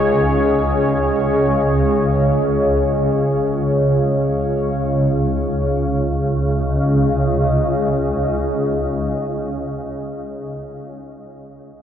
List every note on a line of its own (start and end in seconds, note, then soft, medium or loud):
0.00 5.68 C#2 medium
0.00 5.68 C#3 medium
0.00 5.69 C#4 medium
0.00 5.69 G#4 medium
0.00 5.72 C#5 medium
0.00 5.69 D#5 medium
5.69 9.50 C#2 medium
5.69 9.51 C#3 medium
5.69 9.51 C#4 medium
5.85 9.66 G#4 medium
5.99 9.80 D#5 medium